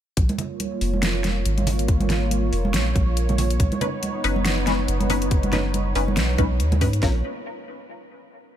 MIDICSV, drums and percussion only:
0, 0, Header, 1, 2, 480
1, 0, Start_track
1, 0, Tempo, 428571
1, 190, Time_signature, 4, 2, 24, 8
1, 9595, End_track
2, 0, Start_track
2, 0, Title_t, "Drums"
2, 190, Note_on_c, 9, 42, 84
2, 192, Note_on_c, 9, 36, 117
2, 302, Note_off_c, 9, 42, 0
2, 304, Note_off_c, 9, 36, 0
2, 327, Note_on_c, 9, 42, 39
2, 331, Note_on_c, 9, 63, 96
2, 429, Note_on_c, 9, 64, 87
2, 431, Note_off_c, 9, 42, 0
2, 431, Note_on_c, 9, 42, 56
2, 443, Note_off_c, 9, 63, 0
2, 541, Note_off_c, 9, 64, 0
2, 543, Note_off_c, 9, 42, 0
2, 671, Note_on_c, 9, 42, 82
2, 675, Note_on_c, 9, 63, 68
2, 783, Note_off_c, 9, 42, 0
2, 787, Note_off_c, 9, 63, 0
2, 910, Note_on_c, 9, 46, 64
2, 1022, Note_off_c, 9, 46, 0
2, 1047, Note_on_c, 9, 63, 82
2, 1150, Note_on_c, 9, 38, 120
2, 1150, Note_on_c, 9, 42, 83
2, 1159, Note_off_c, 9, 63, 0
2, 1262, Note_off_c, 9, 38, 0
2, 1262, Note_off_c, 9, 42, 0
2, 1389, Note_on_c, 9, 63, 64
2, 1390, Note_on_c, 9, 38, 62
2, 1390, Note_on_c, 9, 42, 55
2, 1501, Note_off_c, 9, 63, 0
2, 1502, Note_off_c, 9, 38, 0
2, 1502, Note_off_c, 9, 42, 0
2, 1629, Note_on_c, 9, 42, 83
2, 1741, Note_off_c, 9, 42, 0
2, 1765, Note_on_c, 9, 42, 39
2, 1768, Note_on_c, 9, 63, 91
2, 1869, Note_on_c, 9, 46, 100
2, 1869, Note_on_c, 9, 64, 101
2, 1877, Note_off_c, 9, 42, 0
2, 1880, Note_off_c, 9, 63, 0
2, 1981, Note_off_c, 9, 46, 0
2, 1981, Note_off_c, 9, 64, 0
2, 2006, Note_on_c, 9, 42, 61
2, 2110, Note_off_c, 9, 42, 0
2, 2110, Note_on_c, 9, 42, 85
2, 2111, Note_on_c, 9, 36, 127
2, 2222, Note_off_c, 9, 42, 0
2, 2223, Note_off_c, 9, 36, 0
2, 2244, Note_on_c, 9, 63, 102
2, 2246, Note_on_c, 9, 42, 40
2, 2350, Note_off_c, 9, 42, 0
2, 2350, Note_on_c, 9, 38, 66
2, 2350, Note_on_c, 9, 42, 56
2, 2350, Note_on_c, 9, 64, 82
2, 2356, Note_off_c, 9, 63, 0
2, 2462, Note_off_c, 9, 38, 0
2, 2462, Note_off_c, 9, 42, 0
2, 2462, Note_off_c, 9, 64, 0
2, 2584, Note_on_c, 9, 63, 72
2, 2590, Note_on_c, 9, 42, 83
2, 2696, Note_off_c, 9, 63, 0
2, 2702, Note_off_c, 9, 42, 0
2, 2829, Note_on_c, 9, 46, 63
2, 2941, Note_off_c, 9, 46, 0
2, 2967, Note_on_c, 9, 63, 99
2, 3069, Note_on_c, 9, 38, 123
2, 3069, Note_on_c, 9, 42, 85
2, 3079, Note_off_c, 9, 63, 0
2, 3181, Note_off_c, 9, 38, 0
2, 3181, Note_off_c, 9, 42, 0
2, 3310, Note_on_c, 9, 36, 113
2, 3310, Note_on_c, 9, 42, 56
2, 3312, Note_on_c, 9, 63, 62
2, 3422, Note_off_c, 9, 36, 0
2, 3422, Note_off_c, 9, 42, 0
2, 3424, Note_off_c, 9, 63, 0
2, 3549, Note_on_c, 9, 42, 83
2, 3661, Note_off_c, 9, 42, 0
2, 3685, Note_on_c, 9, 42, 38
2, 3688, Note_on_c, 9, 64, 79
2, 3693, Note_on_c, 9, 63, 92
2, 3789, Note_on_c, 9, 46, 96
2, 3791, Note_off_c, 9, 64, 0
2, 3791, Note_on_c, 9, 64, 91
2, 3797, Note_off_c, 9, 42, 0
2, 3805, Note_off_c, 9, 63, 0
2, 3901, Note_off_c, 9, 46, 0
2, 3903, Note_off_c, 9, 64, 0
2, 3925, Note_on_c, 9, 42, 61
2, 4029, Note_off_c, 9, 42, 0
2, 4029, Note_on_c, 9, 42, 84
2, 4031, Note_on_c, 9, 36, 121
2, 4141, Note_off_c, 9, 42, 0
2, 4143, Note_off_c, 9, 36, 0
2, 4165, Note_on_c, 9, 42, 39
2, 4173, Note_on_c, 9, 63, 95
2, 4269, Note_off_c, 9, 42, 0
2, 4269, Note_on_c, 9, 42, 54
2, 4269, Note_on_c, 9, 64, 84
2, 4285, Note_off_c, 9, 63, 0
2, 4381, Note_off_c, 9, 42, 0
2, 4381, Note_off_c, 9, 64, 0
2, 4510, Note_on_c, 9, 42, 79
2, 4518, Note_on_c, 9, 63, 73
2, 4622, Note_off_c, 9, 42, 0
2, 4630, Note_off_c, 9, 63, 0
2, 4750, Note_on_c, 9, 46, 62
2, 4862, Note_off_c, 9, 46, 0
2, 4884, Note_on_c, 9, 63, 92
2, 4989, Note_on_c, 9, 38, 126
2, 4989, Note_on_c, 9, 42, 81
2, 4996, Note_off_c, 9, 63, 0
2, 5101, Note_off_c, 9, 38, 0
2, 5101, Note_off_c, 9, 42, 0
2, 5229, Note_on_c, 9, 38, 64
2, 5229, Note_on_c, 9, 42, 54
2, 5235, Note_on_c, 9, 63, 67
2, 5341, Note_off_c, 9, 38, 0
2, 5341, Note_off_c, 9, 42, 0
2, 5347, Note_off_c, 9, 63, 0
2, 5470, Note_on_c, 9, 42, 82
2, 5582, Note_off_c, 9, 42, 0
2, 5606, Note_on_c, 9, 42, 38
2, 5606, Note_on_c, 9, 63, 94
2, 5709, Note_on_c, 9, 46, 95
2, 5710, Note_on_c, 9, 64, 90
2, 5718, Note_off_c, 9, 42, 0
2, 5718, Note_off_c, 9, 63, 0
2, 5821, Note_off_c, 9, 46, 0
2, 5822, Note_off_c, 9, 64, 0
2, 5844, Note_on_c, 9, 42, 61
2, 5948, Note_off_c, 9, 42, 0
2, 5948, Note_on_c, 9, 42, 79
2, 5951, Note_on_c, 9, 36, 127
2, 6060, Note_off_c, 9, 42, 0
2, 6063, Note_off_c, 9, 36, 0
2, 6085, Note_on_c, 9, 42, 39
2, 6090, Note_on_c, 9, 63, 93
2, 6189, Note_off_c, 9, 42, 0
2, 6189, Note_on_c, 9, 38, 65
2, 6189, Note_on_c, 9, 42, 53
2, 6194, Note_on_c, 9, 64, 86
2, 6202, Note_off_c, 9, 63, 0
2, 6301, Note_off_c, 9, 38, 0
2, 6301, Note_off_c, 9, 42, 0
2, 6306, Note_off_c, 9, 64, 0
2, 6430, Note_on_c, 9, 42, 78
2, 6430, Note_on_c, 9, 63, 73
2, 6542, Note_off_c, 9, 42, 0
2, 6542, Note_off_c, 9, 63, 0
2, 6669, Note_on_c, 9, 46, 62
2, 6781, Note_off_c, 9, 46, 0
2, 6811, Note_on_c, 9, 63, 92
2, 6909, Note_on_c, 9, 38, 125
2, 6909, Note_on_c, 9, 42, 79
2, 6923, Note_off_c, 9, 63, 0
2, 7021, Note_off_c, 9, 38, 0
2, 7021, Note_off_c, 9, 42, 0
2, 7145, Note_on_c, 9, 63, 75
2, 7151, Note_on_c, 9, 36, 113
2, 7151, Note_on_c, 9, 42, 51
2, 7257, Note_off_c, 9, 63, 0
2, 7263, Note_off_c, 9, 36, 0
2, 7263, Note_off_c, 9, 42, 0
2, 7390, Note_on_c, 9, 42, 78
2, 7502, Note_off_c, 9, 42, 0
2, 7524, Note_on_c, 9, 63, 104
2, 7526, Note_on_c, 9, 42, 37
2, 7526, Note_on_c, 9, 64, 91
2, 7628, Note_off_c, 9, 64, 0
2, 7628, Note_on_c, 9, 64, 103
2, 7630, Note_on_c, 9, 46, 93
2, 7631, Note_on_c, 9, 36, 68
2, 7636, Note_off_c, 9, 63, 0
2, 7638, Note_off_c, 9, 42, 0
2, 7740, Note_off_c, 9, 64, 0
2, 7742, Note_off_c, 9, 46, 0
2, 7743, Note_off_c, 9, 36, 0
2, 7765, Note_on_c, 9, 42, 60
2, 7871, Note_on_c, 9, 36, 105
2, 7871, Note_on_c, 9, 38, 106
2, 7871, Note_on_c, 9, 46, 92
2, 7877, Note_off_c, 9, 42, 0
2, 7983, Note_off_c, 9, 36, 0
2, 7983, Note_off_c, 9, 38, 0
2, 7983, Note_off_c, 9, 46, 0
2, 9595, End_track
0, 0, End_of_file